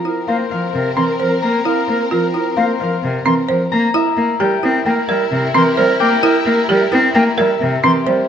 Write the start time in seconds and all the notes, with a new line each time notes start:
Already playing: C4 F4 A#4 C5 F5 A#5
0.05 E4 A#4
0.28 A#3 A#4 C5 F5
0.51 F3 A#4 F5
0.74 C3 A#4
0.96 E3 C4 A#4 C6
1.20 F3 A#4 C5
1.42 A#3 A#4 A#5
1.65 E4 A#4 F5
1.88 A#3 A#4
2.11 F3 F4 A#4 A#5
2.34 E4 A#4
2.57 A#3 A#4 C5 F5
2.80 F3 A#4 F5
3.03 C3 A#4
3.25 E3 C4 A#4 C6
3.48 F3 A#4 C5
3.71 A#3 A#5
3.94 E4 A#4 E5
4.17 A#3 A#4
4.40 G3 G4 A#4 G5
4.62 C4 E4 A#4
4.86 A#3 A#4 G5
5.08 G3 A#4 E5
5.31 C3 A#4
5.54 E3 C4 G4 A#4 C6
5.77 G3 A#4 C5
6.00 A#3 A#4 G5 D6
6.23 E4 A#4 E5
6.46 A#3 A#4
6.69 G3 G4 A#4 G5
6.92 C4 E4 A#4
7.15 A#3 A#4 G5
7.37 G3 A#4 E5
7.60 C3 A#4
7.83 E3 C4 G4 A#4 C6
8.07 G3 A#4 C5